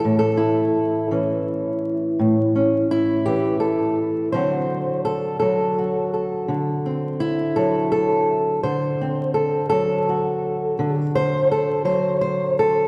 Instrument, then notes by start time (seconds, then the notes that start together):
steel-string acoustic guitar
Already playing: E3
0.00 A4
0.05 A2
0.19 A4
0.37 E4
1.11 E3 C#4
2.19 A2
2.56 C#4
2.91 E4
3.26 E3 G4
3.60 A4
4.32 D3 F#3 C4 F#4 C5
5.05 A4
5.39 F#3 A4
5.78 F#4
6.14 A4
6.48 D3
6.86 C4
7.20 E4
7.56 F#3 A4
7.92 A4
8.63 D3 C5
9.01 C4
9.34 A4
9.70 F#3 A4
10.09 F#4
10.79 D3
11.15 C5
11.52 A4
11.85 F#3 C5
12.21 C5
12.59 A4